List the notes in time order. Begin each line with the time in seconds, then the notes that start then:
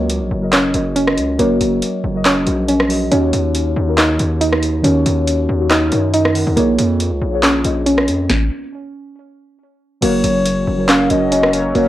Already playing: C#2 F#3 A#3 C#4 F#4 A#4 C#5 D#5
0.10 closed hi-hat
0.21 A#1
0.31 F#1
0.41 F#3 F#4 A#4 D#5
0.53 C#4, cross-stick, clap, closed hi-hat
0.73 F#1 F#3 F#4 A#4 D#5, closed hi-hat
0.96 C#4, closed hi-hat
1.07 cross-stick
1.17 C#2, closed hi-hat
1.37 F#1 F#3 A#3 F#4 A#4 C#5, closed hi-hat
1.61 F#1, closed hi-hat
1.82 closed hi-hat
2.04 F#1
2.13 F#3 F#4 A#4 D#5
2.25 C#4, cross-stick, clap, closed hi-hat
2.45 A#1 F#3 F#4 A#4 D#5, closed hi-hat
2.68 C#4, closed hi-hat
2.80 cross-stick
2.88 F#3 F#4 A#4 D#5, open hi-hat
3.10 D#2 D#3 C#4 D#4 F#4 C#5, closed hi-hat
3.33 D#2, closed hi-hat
3.55 closed hi-hat
3.76 D#2
3.86 D#3 D#4 F#4 A#4
3.98 D#4, cross-stick, clap, closed hi-hat
4.17 D#2 D#3 D#4 F#4 A#4, closed hi-hat
4.41 D#4, closed hi-hat
4.53 cross-stick
4.63 closed hi-hat
4.82 D#2 D#3 C#4 D#4 F#4 C#5, closed hi-hat
5.06 D#2, closed hi-hat
5.28 closed hi-hat
5.49 D#2
5.58 D#3 D#4 F#4 C#5
5.71 D#4, cross-stick, clap, closed hi-hat
5.91 F#2 D#3 D#4 F#4 A#4 C#5, closed hi-hat
6.03 C#5
6.14 D#4 D#5, closed hi-hat
6.25 cross-stick
6.34 D#3 D#4 F#4 A#4 F#5, open hi-hat
6.47 D#2
6.56 A#1 A#3 F4 G#4 C#5, closed hi-hat
6.79 F2, closed hi-hat
7.00 closed hi-hat
7.11 C#2
7.22 A#1
7.32 A#3 F4 G#4 C#5
7.43 C#4, cross-stick, clap, closed hi-hat
7.63 A#1 A#3 F4 G#4 D#5, closed hi-hat
7.86 C#4, closed hi-hat
7.98 cross-stick
8.08 F2, closed hi-hat
8.30 kick, snare
10.01 F#1 F#3 A#3 C#4 F#4 A#4 C#5, closed hi-hat, crash
10.24 F#1, closed hi-hat
10.45 closed hi-hat
10.67 F#1
10.77 F#3 F#4 A#4 C#5
10.88 C#4 F5, cross-stick, clap, closed hi-hat
11.08 F#1 F#3 F#4 A#4 D#5, closed hi-hat
11.32 C#4, closed hi-hat
11.43 cross-stick
11.53 C#5, closed hi-hat
11.73 F#1 F#3 A#3 F#4 A#4 C#5, closed hi-hat